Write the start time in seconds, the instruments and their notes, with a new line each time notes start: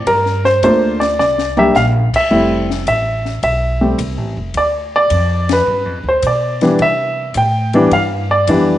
0.06 upright bass G2, grand piano A#4, kick, ride
0.26 snare
0.45 grand piano C5, snare
0.63 upright bass D2, grand piano A3 A#3 D4 F4 C5, kick, hi-hat pedal, ride
1.00 grand piano D5, snare, ride
1.19 upright bass C2, grand piano D5, snare
1.38 snare
1.57 grand piano G3 A#3 D4 G4 E5, mid tom
1.75 upright bass A#1, grand piano F5, snare, hi-hat pedal
2.13 grand piano E5, muted upright bass stroke, kick, crash
2.31 upright bass F1, grand piano G3 A3 C4 E4, kick
2.70 snare
2.87 upright bass A1, grand piano E5, kick, hi-hat pedal, ride
3.25 snare
3.43 upright bass B1, grand piano E5, kick, ride
3.81 grand piano G3 A3 C4 G4
3.98 upright bass C2, kick, hi-hat pedal, ride
4.17 upright bass A1
4.37 upright bass F1
4.54 upright bass D2, grand piano D5, kick, ride
4.96 grand piano D5
5.10 upright bass F2, kick, hi-hat pedal, ride
5.49 grand piano B4, snare, ride
5.66 upright bass G2
5.85 upright bass F2
6.03 upright bass D2
6.09 grand piano C5
6.22 upright bass B2, kick, hi-hat pedal, ride
6.27 grand piano D5
6.61 grand piano E3 G3 B3 D4, snare, ride
6.79 upright bass C3, grand piano E5, kick, ride
7.34 upright bass A2, grand piano G5, kick, hi-hat pedal, ride
7.73 grand piano E3 G3 B3 D4, ride
7.91 upright bass G2, grand piano F5, kick, ride
8.31 grand piano D5
8.47 upright bass F2, grand piano E3 G3 B3 D4, kick, hi-hat pedal, ride